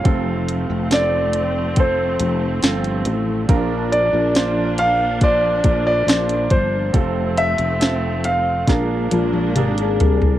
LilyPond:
<<
  \new Staff \with { instrumentName = "Grand piano" } { \time 4/4 \key f \major \tempo 4 = 70 f''4 d''4 c''4. r8 | r8 d''4 f''8 d''8. d''8. c''8~ | c''8 e''4 f''2 r8 | }
  \new Staff \with { instrumentName = "French horn section" } { \time 4/4 \key f \major r1 | r1 | r2 r8 f'8 g'16 aes'8. | }
  \new Staff \with { instrumentName = "Grand piano" } { \time 4/4 \key f \major <c' f' a'>4 <c' f' a'>4 <c' f' a'>4 <c' f' a'>4 | <c' d' f' bes'>4 <d' f' c''>4 <d' f' c''>4 <d' f' c''>4 | <c' f' a'>4 <c' f' a'>4 <d' aes' bes'>4 <d' aes' bes'>4 | }
  \new Staff \with { instrumentName = "Grand piano" } { \clef bass \time 4/4 \key f \major c4. r2 r8 | <bes, f>4. r2 r8 | c4. r8 <bes, f>4. r8 | }
  \new Staff \with { instrumentName = "String section" } { \time 4/4 \key f \major << { <a c'>1 | <bes d'>1 | <a c'>2 <bes d'>2 | } \\ { f1~ | f1~ | f2 aes2 | } >> }
  \new Staff \with { instrumentName = "Fretless electric bass" } { \clef bass \time 4/4 \key f \major f,,8. f,,4.~ f,,16 f,,8 g,,8 a,,8 | bes,,8. bes,,4.~ bes,,16 bes,,8 bes,,8 g,,8 | f,,8. f,,4~ f,,16 bes,,8 bes,,8 aes,,8 c,8 | }
  \new DrumStaff \with { instrumentName = "Drums" } \drummode { \time 4/4 <hh bd>8 hh8 <hh sn>8 hh8 <hh bd>8 hh8 <hh sn>16 hh16 hh8 | <hh bd>8 hh8 <hh sn>8 hh8 <hh bd>8 <hh bd>8 <hh sn>16 hh16 <hh bd>8 | <hh bd>8 hh16 hh16 <hh sn>8 hh8 <hh bd sn>8 <hh tommh>16 tommh16 <hh toml>16 hh16 <hh tomfh>16 tomfh16 | }
>>